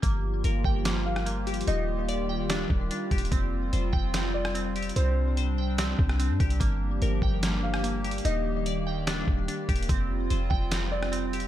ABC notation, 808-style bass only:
X:1
M:4/4
L:1/16
Q:1/4=146
K:Gm
V:1 name="808-style bass" clef=bass
G,,,4 G,,,2 G,,,8- G,,,2 | E,,,8- E,,,2 E,,,2 z2 E,,,2 | F,,,4 F,,,2 F,,,8- F,,,2 | C,,8- C,,2 C,,3 G,, C,,2 |
G,,,4 G,,,2 G,,,8- G,,,2 | E,,,8- E,,,2 E,,,2 z2 E,,,2 | F,,,4 F,,,2 F,,,8- F,,,2 |]